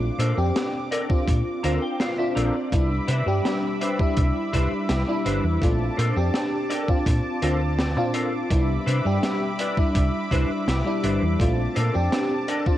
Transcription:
Already playing: analog synth pad D6
0.19 fingered electric bass A#2, clean electric guitar D4 A4 A#4 C5, closed hi-hat
0.37 fingered electric bass F2, fm electric piano C4 D4 G4
0.56 snare, closed hi-hat
0.91 clean electric guitar D4 A4 A#4 D5, closed hi-hat
1.09 fm electric piano C4 D4 F4, kick
1.28 fingered electric bass A#2, kick, closed hi-hat
1.63 fingered electric bass D2, fm electric piano C4 D4 F4, clean electric guitar D4 A4 A#4 C5 A#5, closed hi-hat
1.82 clean electric guitar G5
2.00 clean electric guitar F5, snare, closed hi-hat
2.18 fm electric piano C4 D4 F4, clean electric guitar E5
2.35 fingered electric bass A#1, clean electric guitar D4 A4 A#4 C5 D5, closed hi-hat
2.72 fingered electric bass C2, fm electric piano G3 B3 D4 E4, analog synth pad E5 B5 D6, kick, closed hi-hat
3.08 fingered electric bass C3, clean electric guitar D4 E4 B4 C5, closed hi-hat
3.26 fingered electric bass G2, fm electric piano G3 D4 G4
3.45 snare, closed hi-hat
3.81 clean electric guitar D4 E4 B4 C5, closed hi-hat
3.99 fm electric piano G3 D4 E4, kick
4.16 fingered electric bass C2, kick, closed hi-hat
4.53 fingered electric bass C2, fm electric piano G3 D4 E4, clean electric guitar D4 E4 B4 C5, kick, closed hi-hat
4.72 muted fingered electric bass stroke
4.89 fingered electric bass C2, snare, closed hi-hat
5.08 fm electric piano G3 D4 E4
5.25 fingered electric bass G1, clean electric guitar D4 E4 B4 C5, closed hi-hat
5.44 fingered electric bass E2
5.61 fingered electric bass A#1, fm electric piano A3 C4 D4 F4, analog synth pad A5, kick, closed hi-hat
5.97 fingered electric bass A#2, clean electric guitar D4 A4 A#4 C5, closed hi-hat
6.16 fingered electric bass F2, fm electric piano C4 D4 G4
6.34 snare, closed hi-hat
6.69 clean electric guitar D4 A4 A#4 D5, closed hi-hat
6.88 fm electric piano C4 D4 F4, kick
7.06 fingered electric bass A#2, kick, closed hi-hat
7.42 fingered electric bass D2, fm electric piano C4 D4 F4, clean electric guitar D4 A4 A#4 C5, closed hi-hat
7.79 snare, closed hi-hat
7.97 fingered electric bass A#2, fm electric piano C4 D4 F4
8.14 clean electric guitar D4 A4 A#4 C5, closed hi-hat
8.50 fingered electric bass C2, fm electric piano G3 B3 D4 E4, analog synth pad E5 B5, kick, closed hi-hat
8.86 fingered electric bass C3, clean electric guitar D4 E4 B4 C5, closed hi-hat
9.05 fingered electric bass G2, fm electric piano G3 D4 G4
9.23 snare, closed hi-hat
9.59 clean electric guitar D4 E4 B4 D5, closed hi-hat
9.77 fm electric piano G3 D4 E4, kick
9.95 fingered electric bass C2, kick, closed hi-hat
10.31 fingered electric bass C2, fm electric piano G3 D4 E4, clean electric guitar D4 E4 B4 C5, kick, closed hi-hat
10.68 fingered electric bass C2, snare, closed hi-hat
10.85 fm electric piano G3 D4 E4
11.03 fingered electric bass G1, clean electric guitar D4 E4 B4 C5, closed hi-hat
11.22 fingered electric bass E2
11.39 fingered electric bass A#1, fm electric piano A3 C4 D4 F4, analog synth pad A5, kick, closed hi-hat
11.75 fingered electric bass A#2, clean electric guitar D4 A4 A#4 C5, closed hi-hat
11.94 fingered electric bass F2, fm electric piano C4 D4 G4
12.12 snare, closed hi-hat
12.48 clean electric guitar D4 A4 A#4 D5, closed hi-hat
12.66 fm electric piano C4 D4 F4, kick

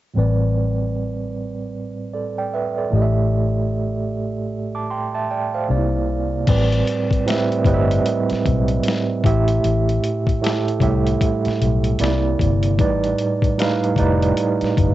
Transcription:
0.14 fingered electric bass A1, tine electric piano A2 G3 C4
0.18 tine electric piano B4 D5
2.14 tine electric piano A4 D5
2.38 tine electric piano D5 G5
2.54 tine electric piano B4 E5
2.78 tine electric piano A4 D5
2.91 fingered electric bass A1, tine electric piano A2 A3 G4
2.95 tine electric piano D#5
3.02 tine electric piano E5
4.75 tine electric piano A5 D6
4.90 tine electric piano G5 C6
5.14 tine electric piano E5 A5
5.30 tine electric piano D5 G5
5.54 tine electric piano C5 F5
5.68 fingered electric bass C2, tine electric piano C3 A#3 D#4 D5
5.77 tine electric piano E4
6.47 fingered electric bass A1, tine electric piano A2 G3 C4 B4 D5, kick, closed hi-hat, crash
6.72 closed hi-hat
6.87 closed hi-hat
7.11 kick, closed hi-hat
7.26 tine electric piano A2 G3 C4 B4 E5, closed hi-hat
7.30 snare
7.52 closed hi-hat
7.64 fingered electric bass G1, tine electric piano A2 G3 C4 B4 D#5, kick, closed hi-hat
7.74 tine electric piano E5
7.91 closed hi-hat
8.06 closed hi-hat
8.30 muted fingered electric bass stroke, snare, closed hi-hat
8.46 fingered electric bass B1, kick, closed hi-hat
8.68 closed hi-hat
8.83 closed hi-hat
8.88 snare
9.23 fingered electric bass A1, tine electric piano A2 A3 G4 E5, kick, closed hi-hat
9.48 closed hi-hat
9.64 fingered electric bass A1, closed hi-hat
9.89 closed hi-hat
10.04 closed hi-hat
10.27 kick, closed hi-hat
10.41 tine electric piano A2 A3 G4 A4, closed hi-hat
10.46 snare
10.68 closed hi-hat
10.80 fingered electric bass C2, tine electric piano A2 G3 G4 E5, kick, closed hi-hat
10.88 tine electric piano A3
11.07 closed hi-hat
11.21 kick, closed hi-hat
11.45 muted fingered electric bass stroke, snare, closed hi-hat
11.62 fingered electric bass B1, closed hi-hat
11.84 closed hi-hat
11.99 fingered electric bass C2, tine electric piano C3 A#3 E4 D5, closed hi-hat
12.04 snare
12.39 fingered electric bass G1, kick, closed hi-hat
12.63 closed hi-hat
12.78 fingered electric bass A1, tine electric piano A2 G3 D#4 B4 D5, kick, closed hi-hat
13.04 closed hi-hat
13.19 closed hi-hat
13.42 kick, closed hi-hat
13.58 tine electric piano A2 G3 D#4 B4 F5, closed hi-hat
13.62 snare
13.84 closed hi-hat
13.96 fingered electric bass F1, tine electric piano A2 G3 D#4 B4 D5, kick, closed hi-hat
14.23 closed hi-hat
14.37 closed hi-hat
14.61 muted fingered electric bass stroke, snare, closed hi-hat
14.77 fingered electric bass G1, kick, closed hi-hat

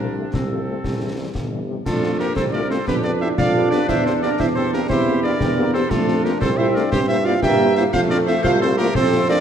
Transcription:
Already playing: tuba C2, trombone section F3 C4, woodwind section D4, cornet A#4
0.00 french horn section C3 F3 A3
0.17 french horn section C3 F3 A3
0.34 tuba C2, woodwind section C4, cornet A4, concert bass drum, snare
0.51 french horn section C3 F3 A3
0.68 french horn section C3 F3 A3
0.84 tuba C2, trombone section E3, concert bass drum, snare
1.01 french horn section C3 E3 G3
1.19 french horn section C3 E3 G3
1.35 tuba G1, concert bass drum, snare
1.52 french horn section C3 E3 G3
1.68 french horn section C3 E3 G3
1.85 tuba F2, euphonium A3, trombone section D4, woodwind section F4, cornet A4, concert bass drum, snare, crash
2.03 french horn section A3 C4 F4, snare
2.19 french horn section A3 C4 F4, euphonium A#3, woodwind section G4, cornet A#4, snare
2.35 tuba C2, euphonium C4, trombone section C4, woodwind section A4, cornet C5, concert bass drum, snare
2.52 french horn section A3 C4 F4, euphonium D4, woodwind section A#4, cornet D5
2.69 french horn section A3 C4 F4, euphonium C4, woodwind section A4, cornet C5, snare
2.86 tuba F2, euphonium B3, trombone section D4, woodwind section G4, cornet B4, concert bass drum, snare
3.03 french horn section B3 D4 G4, euphonium D4, woodwind section B4, cornet D5
3.20 french horn section B3 D4 G4, euphonium E4, woodwind section C5, cornet E5
3.37 tuba F2, trombone section D4, euphonium F4, woodwind section D5, cornet F5, concert bass drum, snare
3.55 french horn section B3 D4 G4
3.71 french horn section B3 D4 G4, euphonium D4, woodwind section B4, cornet D5, snare
3.87 tuba E2, euphonium E4, woodwind section C5, cornet E5, concert bass drum, snare, crash
4.05 french horn section A#3 C4 G4, euphonium C4, woodwind section A4, cornet C5, snare
4.22 french horn section A#3 C4 G4, euphonium D4, woodwind section A#4, cornet D5, snare
4.39 tuba E2, euphonium E4, woodwind section C5, cornet E5, concert bass drum, snare
4.56 french horn section A#3 C4 G4, euphonium C4, woodwind section A4, cornet C5
4.73 euphonium A#3, french horn section A#3 C4 G4, woodwind section G4, cornet A#4, snare
4.88 tuba E2, euphonium C4, trombone section E4, woodwind section G4, cornet C5, concert bass drum, snare
5.07 french horn section A#3 C4 G4
5.23 french horn section A#3 C4 G4, euphonium D4, woodwind section A#4, cornet D5
5.40 tuba E2, trombone section C4, concert bass drum, snare
5.57 french horn section A#3 C4 G4, trombone section A#3
5.74 french horn section A#3 C4 G4, euphonium C4, trombone section C4, woodwind section A4, cornet C5, snare
5.90 tuba F2, euphonium A3, trombone section D4, woodwind section F4, cornet A4, concert bass drum, snare, crash
6.08 french horn section A3 C4 F4, snare
6.24 french horn section A3 C4 F4, euphonium A#3, woodwind section G4, cornet A#4, snare
6.41 tuba C2, euphonium C4, trombone section C4, woodwind section A4, cornet C5, concert bass drum, snare
6.57 french horn section A3 C4 F4, euphonium E4, woodwind section C5, cornet E5
6.75 french horn section A3 C4 F4, euphonium D4, woodwind section A#4, cornet D5, snare
6.92 tuba G2, euphonium C4, woodwind section G4, cornet C5, concert bass drum, snare
7.09 french horn section A#3 C4 E4, euphonium E4, woodwind section C5, cornet E5
7.24 french horn section A#3 C4 E4, euphonium F4, woodwind section D5, cornet F5
7.43 tuba G2, trombone section A#3, euphonium G4, woodwind section E5, cornet G5, concert bass drum, snare
7.60 french horn section A#3 C4 E4
7.76 french horn section A#3 C4 E4, euphonium E4, woodwind section C5, cornet E5, snare
7.92 tuba F2, trombone section A3, euphonium F4, woodwind section C5, cornet F5, concert bass drum, snare, crash
8.09 french horn section A3 C4 F4, euphonium D4, woodwind section A#4, cornet D5, snare
8.26 french horn section A3 C4 F4, euphonium E4, woodwind section C5, cornet E5, snare
8.43 tuba C2, euphonium F4, woodwind section C5, cornet F5, concert bass drum, snare
8.61 french horn section A3 C4 F4, euphonium C4, woodwind section A4, cornet C5
8.78 french horn section A3 C4 F4, euphonium A#3, woodwind section G4, cornet A#4, snare
8.95 tuba F2, trombone section C4, euphonium C4, woodwind section A4, cornet C5, concert bass drum, snare
9.12 french horn section A3 C4 F4
9.29 french horn section A3 C4 F4, euphonium D4, woodwind section A#4, cornet D5

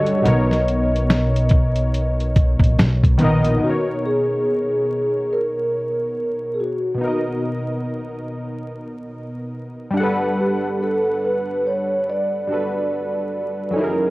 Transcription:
Already playing: synth keys D3 G3 F#4 A4 C#5, vibraphone D#5
0.06 closed hi-hat
0.22 upright bass B1, synth keys B2 B3 D#4, closed hi-hat
0.26 synth keys A#4 C#5
0.51 snare, closed hi-hat
0.68 closed hi-hat
0.96 closed hi-hat
1.10 snare, closed hi-hat
1.36 closed hi-hat
1.49 kick, closed hi-hat
1.76 closed hi-hat
1.94 closed hi-hat
2.20 closed hi-hat
2.36 kick, closed hi-hat
2.60 upright bass A#1, kick
2.64 closed hi-hat
2.79 upright bass B1, snare, closed hi-hat
3.04 kick, closed hi-hat
3.18 upright bass A#1, synth keys D#3 B3 D#4, closed hi-hat
3.23 synth keys A#4 D#5
3.45 closed hi-hat
3.57 synth keys B2 B3
3.63 synth keys C#4 A#4, vibraphone F#4
3.70 synth keys D#4 C#5
4.06 vibraphone G#4
5.33 vibraphone A#4
6.54 vibraphone G#4
6.60 vibraphone F#4
6.95 synth keys B2 B3
7.01 synth keys D#4 A#4
7.07 synth keys D#5
9.90 synth keys G3 D4
9.97 synth keys A4 F#5
10.03 synth keys B4
10.40 vibraphone G4
10.83 vibraphone A4
11.25 vibraphone B4
11.67 vibraphone C#5
12.09 vibraphone D5
12.47 synth keys G3 D4 F#4
12.52 synth keys A4 B4
13.71 synth keys F#3 C#4, vibraphone A4
13.76 synth keys D#4 E4, vibraphone A#4
13.81 synth keys G#4 A#4

